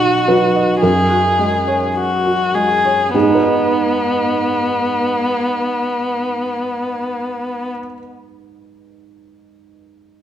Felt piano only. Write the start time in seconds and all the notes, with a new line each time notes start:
Already playing: B1 F#3 C#5 D#5
0.00 F#4
0.28 F#3 B4
0.55 D#5
0.82 F#2 A#4
1.09 F#4
1.39 G#3
1.67 C#5
2.25 F#4
2.55 G#3
2.85 C#5
3.14 G#2 G#4
3.21 G#3
3.28 D#4
3.35 B4
3.42 D#5